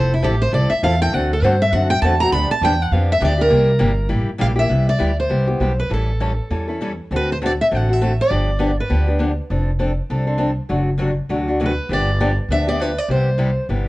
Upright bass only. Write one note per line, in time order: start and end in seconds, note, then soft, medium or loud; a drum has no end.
0.00 0.23 F1 medium
0.23 0.52 A1 medium
0.53 0.69 C2 medium
0.71 muted upright bass stroke soft
0.83 1.12 E2 loud
1.13 1.41 D2 medium
1.42 1.71 G2 medium
1.73 2.01 F#2 medium
2.02 2.31 E2 medium
2.32 2.48 D2 medium
2.61 2.90 E2 medium
2.91 3.20 F2 medium
3.22 3.50 D2 loud
3.51 3.80 C2 medium
3.81 4.10 G1 medium
4.10 4.27 A1 medium
4.29 muted upright bass stroke soft
4.41 4.70 A#1 loud
4.71 4.95 C2 medium
5.01 5.26 D2 medium
5.31 5.56 C2 medium
5.60 5.86 B1 medium
5.91 6.39 A1 medium
6.50 6.98 E2 medium
7.11 7.59 D2 medium
7.71 8.19 A1 medium
8.31 8.79 G1 medium
8.91 9.38 D2 medium
9.50 9.98 F1 medium
10.10 10.58 C2 medium
10.70 11.18 F#1 medium
11.29 11.77 D2 medium
11.89 12.37 G1 medium
12.48 12.97 D2 medium
13.09 13.57 C2 medium
13.69 13.88 G1 medium